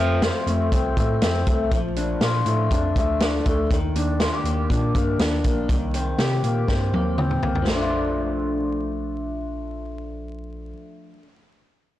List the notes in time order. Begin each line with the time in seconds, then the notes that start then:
Already playing: F2 F3 A3
0.00 C4
0.22 F4, snare, closed hi-hat
0.47 F2 A3, closed hi-hat
0.72 C2 C4, kick, closed hi-hat
0.97 A2 A3, kick, closed hi-hat
1.21 F2 C4, snare, closed hi-hat
1.46 C2 A3, kick, closed hi-hat
1.71 A#1 F3, kick, closed hi-hat
1.96 D4, closed hi-hat
2.21 A#2 F4, snare, closed hi-hat
2.46 A2 A3, closed hi-hat
2.71 F2 D4, kick, closed hi-hat
2.96 D2 A3, kick, closed hi-hat
3.20 D4, snare, closed hi-hat
3.45 D2 A3, kick, closed hi-hat
3.71 D#2 D#3, kick, closed hi-hat
3.95 D#2 D4, closed hi-hat
4.20 F4, snare, closed hi-hat
4.33 G4
4.45 D#2 A#3, closed hi-hat
4.70 A#2 D4, kick, closed hi-hat
4.95 G2 A#3, kick, closed hi-hat
5.19 D#2 D4, snare, closed hi-hat
5.44 A#1 A#3, kick, closed hi-hat
5.69 C2 D#3, kick, closed hi-hat
5.94 C4, closed hi-hat
6.18 C3 G4, snare, closed hi-hat
6.43 A#2 A#3, closed hi-hat
6.68 G2 C4, kick, snare
6.93 D#2 A#3, high tom
7.18 C4, mid tom
7.31 mid tom
7.43 C2 A#3, floor tom
7.55 floor tom
7.62 F3
7.67 A#1 A3, snare, splash
7.75 D4
7.81 F4